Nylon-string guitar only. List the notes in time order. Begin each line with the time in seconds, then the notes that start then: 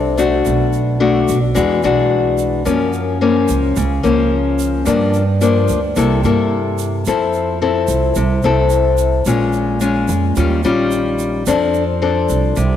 Already playing: C3 C4 D4 A4
0.17 A3 D4 F#4
0.45 B2
1.00 A3 D4 F#4
1.55 E3 G#3 D4 F#4
1.84 G#3 D4 F#4
2.65 F#2 F3 A#3 C#4
3.21 F3 A#3 C#4
3.77 C#3
4.03 F3 A#3 C#4
4.85 G2 F3 A#3 D4
5.41 F3 A#3 D4
5.96 C3 A#3 E4 A4
6.25 A#3 E4 A4
7.07 F3 C4 E4 A4
7.62 C4 E4 A4
8.16 C3
8.44 C4 E4 A4
9.27 A#2 G#3 C#4 F4
9.81 G#3 C#4 F4
10.37 D#3 G3 C#4 F4
10.65 G3 C#4 F4
11.47 F3 C4 D4 A4
12.02 C4 D4 A4
12.56 C3